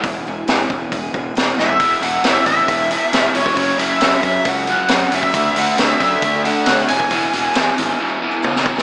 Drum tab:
HH |o---o---o---o---|o-o-o-o-o-o-o-o-|o-o-o-o-o-o-o-o-|o-o-o-o-o-o-o-o-|
SD |----o-------o-o-|----o-------o---|----o-------o---|----o-------o---|
T1 |----------------|----------------|----------------|----------------|
FT |---------------o|----------------|----------------|----------------|
BD |o-----o-o-o-----|o-----o-o------o|o-----o-o------o|o-----o-o------o|

HH |o-o-o-o---------|
SD |----o--------o-o|
T1 |------------o---|
FT |----------------|
BD |o-------------o-|